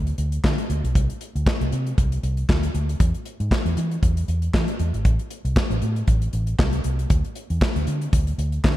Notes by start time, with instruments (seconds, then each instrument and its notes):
Already playing: fingered electric bass D2
0.07 closed hi-hat
0.18 fingered electric bass D2, closed hi-hat
0.32 closed hi-hat
0.44 fingered electric bass D3, kick, snare, clap
0.58 closed hi-hat
0.70 fingered electric bass D2, closed hi-hat
0.84 fingered electric bass B1, closed hi-hat
0.95 fingered electric bass C2, kick, closed hi-hat
1.10 closed hi-hat
1.21 closed hi-hat
1.35 fingered electric bass D2, closed hi-hat
1.46 kick, snare, clap
1.61 fingered electric bass C2, closed hi-hat
1.72 fingered electric bass C3, closed hi-hat
1.87 closed hi-hat
1.98 fingered electric bass C2, kick, closed hi-hat
2.12 closed hi-hat
2.23 fingered electric bass C2, closed hi-hat
2.37 closed hi-hat
2.49 fingered electric bass D2, kick, snare, clap
2.63 closed hi-hat
2.75 fingered electric bass D2, closed hi-hat
2.89 closed hi-hat
3.00 fingered electric bass E2, kick, closed hi-hat
3.14 closed hi-hat
3.25 closed hi-hat
3.40 fingered electric bass G#2, closed hi-hat
3.51 kick, snare, clap
3.66 fingered electric bass E2, closed hi-hat
3.77 fingered electric bass E3, closed hi-hat
3.91 closed hi-hat
4.03 fingered electric bass E2, kick, closed hi-hat
4.17 closed hi-hat
4.28 fingered electric bass E2, closed hi-hat
4.42 closed hi-hat
4.54 fingered electric bass E3, kick, snare, clap
4.68 closed hi-hat
4.79 fingered electric bass E2, closed hi-hat
4.94 fingered electric bass G#1, closed hi-hat
5.05 fingered electric bass A1, kick, closed hi-hat
5.19 closed hi-hat
5.31 closed hi-hat
5.45 fingered electric bass C2, closed hi-hat
5.56 kick, snare, clap
5.70 fingered electric bass A1, closed hi-hat
5.82 fingered electric bass A2, closed hi-hat
5.96 closed hi-hat
6.08 fingered electric bass A1, kick, closed hi-hat
6.22 closed hi-hat
6.33 fingered electric bass A1, closed hi-hat
6.47 closed hi-hat
6.59 fingered electric bass C2, kick, snare, clap
6.73 closed hi-hat
6.84 fingered electric bass C2, closed hi-hat
6.99 closed hi-hat
7.10 fingered electric bass D2, kick, closed hi-hat
7.24 closed hi-hat
7.35 closed hi-hat
7.50 fingered electric bass E2, closed hi-hat
7.61 kick, snare, clap
7.76 fingered electric bass D2, closed hi-hat
7.87 fingered electric bass D3, closed hi-hat
8.01 closed hi-hat
8.13 fingered electric bass D2, kick, closed hi-hat
8.27 closed hi-hat
8.38 fingered electric bass D2, closed hi-hat
8.52 closed hi-hat
8.64 fingered electric bass D3, kick, snare, clap